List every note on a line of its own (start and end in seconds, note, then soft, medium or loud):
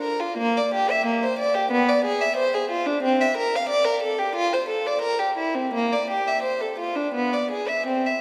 0.02 0.19 A#4 medium
0.20 0.38 F4 medium
0.38 0.56 A#3 medium
0.57 0.74 D5 medium
0.74 0.90 G4 medium
0.90 1.06 E5 medium
1.06 1.22 A#3 medium
1.23 1.38 C5 medium
1.39 1.54 D5 medium
1.55 1.71 G4 medium
1.71 1.87 B3 medium
1.89 2.04 D5 medium
2.05 2.20 G#4 medium
2.21 2.37 E5 medium
2.37 2.53 C5 medium
2.54 2.70 G#4 medium
2.71 2.86 F4 medium
2.86 3.03 D4 medium
3.03 3.19 C4 medium
3.21 3.37 E5 medium
3.37 3.53 A#4 medium
3.56 3.70 F5 medium
3.69 3.85 D5 medium
3.85 4.01 A#4 medium
4.03 4.18 A4 medium
4.19 4.35 G4 medium
4.36 4.51 F4 medium
4.53 4.69 C5 medium
4.69 4.84 A4 medium
4.86 5.02 D5 medium
5.02 5.18 A#4 medium
5.19 5.36 G4 medium
5.38 5.54 E4 medium
5.55 5.73 C4 medium
5.74 5.91 A#3 medium
5.93 6.10 D5 medium
6.10 6.27 G4 medium
6.28 6.44 E5 medium
6.43 6.60 C5 medium
6.61 6.78 A4 medium
6.79 6.96 F4 medium
6.96 7.14 D4 medium
7.15 7.32 B3 medium
7.33 7.51 D5 soft
7.51 7.68 G#4 medium
7.68 7.86 E5 medium
7.87 8.04 C4 medium
8.06 8.21 E5 medium